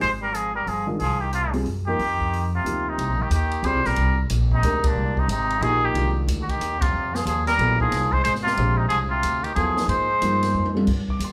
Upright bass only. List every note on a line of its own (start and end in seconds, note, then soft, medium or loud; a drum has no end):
0.02 0.64 G#1 medium
0.67 0.98 G1 medium
1.00 1.63 C2 medium
1.66 1.97 F#2 medium
1.99 2.61 F2 medium
2.65 2.96 D2 medium
2.98 3.08 C2 medium
3.08 3.19 A#1 soft
3.20 3.30 G1 medium
3.30 3.62 D#2 medium
3.63 3.74 D2 medium
3.74 3.85 C2 medium
3.86 3.96 A#1 medium
3.97 4.29 C2 medium
4.30 4.62 A#1 medium
4.63 4.82 D2 medium
4.84 muted upright bass stroke soft
4.95 5.28 C2 medium
5.28 5.60 G#1 medium
5.61 5.93 A#1 medium
5.94 6.27 C2 medium
6.27 6.59 D2 medium
6.60 6.92 D#2 medium
6.93 7.25 F2 medium
7.25 7.58 D#2 medium
7.58 7.91 A#1 medium
7.91 8.24 C2 medium
8.24 8.57 G#1 medium
8.57 8.90 A#1 medium
8.91 9.23 C2 medium
9.24 9.56 D2 medium
9.56 9.87 D#2 medium
9.88 10.21 G#2 medium
10.22 10.53 G2 medium
10.54 10.87 F2 medium
10.87 11.19 G2 medium
11.19 11.32 D#2 medium